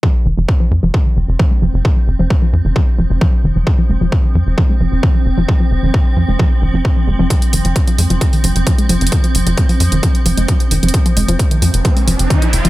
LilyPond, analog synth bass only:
\new Staff \with { instrumentName = "Analog synth bass" } { \clef bass \time 4/4 \key f \minor \tempo 4 = 132 r8 f,,16 f,,16 r8 f,16 f,,16 r8 f,,16 f,,16 r8 f,,16 f,,16 | r8 f,,16 f,,16 r8 f,16 f,,16 r8 f,,16 f,,16 r8 f,,16 f,,16 | r8 f,,16 f,,16 r8 f,16 f,,16 r8 f,,16 f,,16 r8 f,,16 f,,16 | r8 f,,16 f,,16 r8 f,16 f,,16 r8 f,,16 f,,16 r8 f,,16 f,,16 |
r8 f,,16 f,,16 r8 f,16 f,,16 r8 f,,16 f,,16 r8 f,,16 f,,16 | r8 f,,16 f,,16 r8 f,16 f,,16 r8 f,,16 f,,16 r8 f,,16 f,,16 | r8 f,,16 f,,16 r8 f,16 f,,16 r8 f,,16 f,,16 r8 f,,16 f,,16 | }